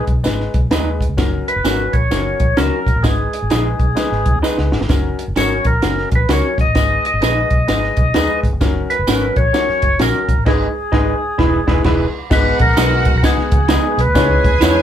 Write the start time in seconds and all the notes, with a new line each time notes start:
0.07 B1, kick, closed hi-hat
0.24 G#1 G#3 D#4 B4, snare, closed hi-hat, tambourine
0.40 snare
0.54 B1, kick, closed hi-hat
0.71 D#2 G#3 D#4 G#4 B4, snare, closed hi-hat, tambourine
1.01 kick, closed hi-hat
1.09 C#2
1.17 F#1 F#3 C#4 A#4, kick, snare, closed hi-hat, tambourine
1.48 B4, closed hi-hat
1.56 F#1
1.64 G#1 F#3 C#4 F#4 A#4, snare, closed hi-hat, tambourine
1.93 A#1 C#5, kick, closed hi-hat
2.10 F#1 F#3 C#4 A#4, snare, closed hi-hat, tambourine
2.40 A#1, kick, closed hi-hat
2.57 C#2 F#3 C#4 F#4 A#4, snare, closed hi-hat, tambourine
2.87 A#1, kick, closed hi-hat
2.96 A1
3.03 G#1 G#3 D#4 G#4 B4, kick, snare, closed hi-hat, tambourine
3.33 closed hi-hat
3.42 G#1
3.50 A#1 G#3 D#4 G#4 B4, snare, closed hi-hat, tambourine
3.80 B1, kick, closed hi-hat
3.95 G#3 D#4 B4, snare, closed hi-hat, tambourine
4.12 G#1, snare
4.26 B1, kick, closed hi-hat
4.35 D#2
4.42 G#3 D#4 G#4 B4, snare, tambourine
4.58 C#2, snare
4.72 G#1, snare
4.81 G1, snare
4.89 F#1 F#3 C#4 A#4, kick, snare, closed hi-hat, tambourine
5.19 closed hi-hat
5.28 F#1
5.36 G#1 F#3 C#4 F#4 A#4 C#5, snare, closed hi-hat, tambourine
5.65 A#1 A#4, kick, closed hi-hat
5.82 F#1 F#3 C#4 A#4, snare, closed hi-hat, tambourine
5.98 snare
6.12 A#1 B4, kick, closed hi-hat
6.28 C#2 F#3 C#4 F#4 A#4, snare, closed hi-hat, tambourine
6.32 C#5
6.58 A#1 D#5, kick, closed hi-hat
6.67 A1
6.75 G#1 G#3 D#4 B4, kick, snare, closed hi-hat, tambourine
7.05 D#5, closed hi-hat
7.14 G#1
7.21 A#1 G#3 D#4 G#4 B4, snare, closed hi-hat, tambourine
7.50 B1, kick, closed hi-hat
7.67 G#1 G#3 D#4 B4, snare, closed hi-hat, tambourine
7.84 snare
7.97 B1, kick, closed hi-hat
8.14 D#2 G#3 D#4 G#4 B4, snare, closed hi-hat, tambourine
8.43 G#1, kick, closed hi-hat
8.52 G1
8.60 F#1 F#3 C#4 A#4, kick, snare, closed hi-hat, tambourine
8.90 B4, closed hi-hat
8.99 F#1
9.07 G#1 F#3 C#4 F#4 A#4, snare, closed hi-hat, tambourine
9.36 A#1 C#5, kick, closed hi-hat
9.53 F#3 C#4 A#4, snare, closed hi-hat, tambourine
9.69 muted fingered electric bass stroke, snare
9.82 F#1, kick, closed hi-hat
9.99 A#1 F#3 C#4 F#4 A#4, snare, closed hi-hat, tambourine
10.29 A#1, kick, closed hi-hat
10.38 A1
10.45 G#1 G#3 D#4 G#4 B4, kick, snare, crash
10.92 G#1 G#3 D#4 G#4 B4, kick, snare
11.38 E1 G#3 E4 G#4 B4, kick, snare
11.67 E1 G#3 E4 G#4 B4, kick, snare
11.84 E1 G#3 E4 G#4 B4, kick, snare, crash
12.30 G#1 G#3 B3 D#4 F#4 B4 F#5, kick, snare, crash, tambourine
12.59 A#1 A#4, kick, closed hi-hat
12.77 B1 G#3 B3 D#4 G#4 B4, snare, closed hi-hat, tambourine
13.05 kick, closed hi-hat
13.14 B1 A#4
13.23 G#3 B3 D#4 G#4 B4, kick, snare, closed hi-hat, tambourine
13.38 muted fingered electric bass stroke, snare
13.52 C#2, kick, closed hi-hat
13.69 G#3 B3 D#4 G#4 B4, snare, closed hi-hat, tambourine
13.98 B1 B4, closed hi-hat
14.07 D2
14.15 C#2 G#3 C#4 E4 G#4 C#5 G#5, kick, snare, closed hi-hat, tambourine
14.44 D#2, kick, closed hi-hat
14.61 E2 G#3 C#4 E4 G#4 C#5, snare, closed hi-hat, tambourine